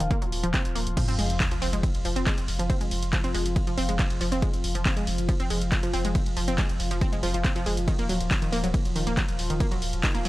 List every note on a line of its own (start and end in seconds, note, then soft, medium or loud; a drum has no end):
0.00 0.10 D#1 medium
0.00 0.10 D#3 medium
0.00 0.96 F3 medium
0.00 0.96 F4 medium
0.00 closed hi-hat medium
0.11 0.18 A#3 loud
0.11 kick loud
0.11 closed hi-hat medium
0.22 0.32 D#1 medium
0.22 0.28 F#3 medium
0.22 closed hi-hat medium
0.32 0.43 D#1 loud
0.32 open hi-hat loud
0.43 0.54 D#1 medium
0.43 0.53 F3 loud
0.43 closed hi-hat medium
0.54 0.64 C4 loud
0.54 kick loud
0.54 clap loud
0.54 closed hi-hat medium
0.65 0.75 D#1 medium
0.65 closed hi-hat medium
0.75 0.86 D#1 loud
0.75 0.80 A#3 medium
0.75 open hi-hat loud
0.87 0.97 D#1 medium
0.87 closed hi-hat medium
0.97 1.07 F3 medium
0.97 10.29 F3 medium
0.97 10.29 F4 medium
0.97 kick loud
0.97 closed hi-hat medium
0.97 ride medium
0.97 crash loud
0.97 sub drop medium
1.08 1.18 F1 medium
1.08 1.15 C4 loud
1.08 closed hi-hat medium
1.19 1.29 F1 loud
1.19 1.25 G#3 medium
1.19 open hi-hat loud
1.30 1.40 F1 medium
1.30 closed hi-hat medium
1.40 kick loud
1.40 clap loud
1.40 closed hi-hat medium
1.40 ride medium
1.51 1.61 F1 medium
1.51 1.61 F3 medium
1.51 closed hi-hat medium
1.62 1.72 F1 loud
1.62 1.69 C4 loud
1.62 open hi-hat medium
1.73 1.83 F1 medium
1.73 1.79 G#3 medium
1.73 closed hi-hat medium
1.83 kick loud
1.83 closed hi-hat medium
1.83 ride medium
1.95 2.04 F1 medium
1.95 closed hi-hat medium
2.05 2.16 F1 loud
2.05 2.15 F3 medium
2.05 open hi-hat loud
2.16 2.26 F1 medium
2.16 2.23 C4 loud
2.16 closed hi-hat medium
2.27 2.33 G#3 medium
2.27 kick loud
2.27 clap loud
2.27 closed hi-hat medium
2.27 ride medium
2.38 2.48 F1 medium
2.38 closed hi-hat medium
2.48 2.59 F1 loud
2.48 open hi-hat medium
2.59 2.70 F1 medium
2.59 2.69 F3 medium
2.59 closed hi-hat medium
2.70 2.77 C4 loud
2.70 kick loud
2.70 closed hi-hat medium
2.70 ride medium
2.81 2.91 F1 medium
2.81 2.87 G#3 medium
2.81 closed hi-hat medium
2.91 3.02 F1 loud
2.91 open hi-hat loud
3.02 3.13 F1 medium
3.02 closed hi-hat medium
3.13 3.23 F3 medium
3.13 kick loud
3.13 clap loud
3.13 closed hi-hat medium
3.13 ride medium
3.24 3.34 F1 medium
3.24 3.30 C4 loud
3.24 closed hi-hat medium
3.34 3.45 F1 loud
3.34 3.41 G#3 medium
3.34 open hi-hat loud
3.46 3.56 F1 medium
3.46 closed hi-hat medium
3.56 kick loud
3.56 closed hi-hat medium
3.56 ride medium
3.67 3.77 F1 medium
3.67 3.77 F3 medium
3.67 closed hi-hat medium
3.78 3.88 F1 loud
3.78 3.84 C4 loud
3.78 open hi-hat loud
3.89 3.99 F1 medium
3.89 3.95 G#3 medium
3.89 closed hi-hat medium
3.99 kick loud
3.99 clap loud
3.99 closed hi-hat medium
3.99 ride medium
4.10 4.20 F1 medium
4.10 closed hi-hat medium
4.21 4.31 F1 loud
4.21 4.31 F3 medium
4.21 open hi-hat loud
4.32 4.42 F1 medium
4.32 4.38 C4 loud
4.32 closed hi-hat medium
4.42 4.49 G#3 medium
4.42 kick loud
4.42 closed hi-hat medium
4.42 ride medium
4.54 4.63 F1 medium
4.54 closed hi-hat medium
4.64 4.75 F1 medium
4.64 open hi-hat loud
4.75 4.85 F1 medium
4.75 4.85 F3 medium
4.75 closed hi-hat medium
4.85 4.92 C4 loud
4.85 kick loud
4.85 clap loud
4.85 closed hi-hat medium
4.85 ride medium
4.97 5.07 F1 medium
4.97 5.03 G#3 medium
4.97 closed hi-hat medium
5.07 5.18 F1 loud
5.07 open hi-hat loud
5.18 5.29 F1 medium
5.18 closed hi-hat medium
5.29 5.39 F3 medium
5.29 kick loud
5.29 closed hi-hat medium
5.29 ride medium
5.40 5.50 F1 medium
5.40 5.46 C4 loud
5.40 closed hi-hat medium
5.50 5.61 F1 loud
5.50 5.57 G#3 medium
5.50 open hi-hat loud
5.61 5.72 F1 medium
5.61 closed hi-hat medium
5.72 kick loud
5.72 clap loud
5.72 closed hi-hat medium
5.72 ride medium
5.83 5.93 F1 medium
5.83 5.93 F3 medium
5.83 closed hi-hat medium
5.93 6.04 F1 loud
5.93 6.00 C4 loud
5.93 open hi-hat medium
6.05 6.15 F1 medium
6.05 6.11 G#3 medium
6.05 closed hi-hat medium
6.15 kick loud
6.15 closed hi-hat medium
6.15 ride medium
6.26 6.36 F1 medium
6.26 closed hi-hat medium
6.37 6.47 F1 loud
6.37 6.47 F3 medium
6.37 open hi-hat loud
6.48 6.58 F1 medium
6.48 6.54 C4 loud
6.48 closed hi-hat medium
6.58 6.65 G#3 medium
6.58 kick loud
6.58 clap loud
6.58 closed hi-hat medium
6.58 ride medium
6.69 6.79 F1 medium
6.69 closed hi-hat medium
6.80 6.90 F1 loud
6.80 open hi-hat loud
6.91 7.01 F1 medium
6.91 7.01 F3 medium
6.91 closed hi-hat medium
7.01 7.08 C4 loud
7.01 kick loud
7.01 closed hi-hat medium
7.01 ride medium
7.12 7.22 F1 medium
7.12 7.19 G#3 medium
7.12 closed hi-hat medium
7.23 7.33 F1 loud
7.23 7.33 F3 loud
7.23 open hi-hat loud
7.34 7.44 F1 medium
7.34 7.41 F3 medium
7.34 closed hi-hat medium
7.44 7.51 C4 loud
7.44 kick loud
7.44 clap loud
7.44 closed hi-hat medium
7.44 ride medium
7.56 7.66 F1 medium
7.56 7.65 F3 loud
7.56 closed hi-hat medium
7.66 7.77 F1 loud
7.66 7.73 G#3 medium
7.66 open hi-hat medium
7.77 7.88 F1 medium
7.77 closed hi-hat medium
7.88 7.98 D#3 medium
7.88 kick loud
7.88 closed hi-hat medium
7.88 ride medium
7.99 8.09 D#1 medium
7.99 8.05 A#3 loud
7.99 closed hi-hat medium
8.09 8.20 D#1 loud
8.09 8.16 F#3 medium
8.09 open hi-hat loud
8.20 8.31 D#1 medium
8.20 closed hi-hat medium
8.31 kick loud
8.31 clap loud
8.31 closed hi-hat medium
8.31 ride medium
8.42 8.52 D#1 medium
8.42 8.52 D#3 medium
8.42 closed hi-hat medium
8.52 8.63 D#1 loud
8.52 8.59 A#3 loud
8.52 open hi-hat medium
8.64 8.74 D#1 medium
8.64 8.70 F#3 medium
8.64 closed hi-hat medium
8.74 kick loud
8.74 closed hi-hat medium
8.74 ride medium
8.85 8.95 D#1 medium
8.85 closed hi-hat medium
8.96 9.06 D#1 loud
8.96 9.06 D#3 medium
8.96 open hi-hat loud
9.07 9.17 D#1 medium
9.07 9.13 A#3 loud
9.07 closed hi-hat medium
9.17 9.24 F#3 medium
9.17 kick loud
9.17 clap loud
9.17 closed hi-hat medium
9.17 ride medium
9.28 9.38 D#1 medium
9.28 closed hi-hat medium
9.39 9.49 D#1 loud
9.39 open hi-hat medium
9.50 9.60 D#1 medium
9.50 9.60 D#3 medium
9.50 closed hi-hat medium
9.60 9.67 A#3 loud
9.60 kick loud
9.60 closed hi-hat medium
9.60 ride medium
9.71 9.81 D#1 medium
9.71 9.78 F#3 medium
9.71 closed hi-hat medium
9.82 9.93 D#1 loud
9.82 open hi-hat loud
9.93 10.03 D#1 medium
9.93 closed hi-hat medium
10.03 10.14 D#3 medium
10.03 kick loud
10.03 clap loud
10.03 closed hi-hat medium
10.03 ride medium
10.15 10.25 D#1 medium
10.15 10.21 A#3 loud
10.15 closed hi-hat medium
10.25 10.29 D#1 loud
10.25 10.29 F#3 medium
10.25 open hi-hat medium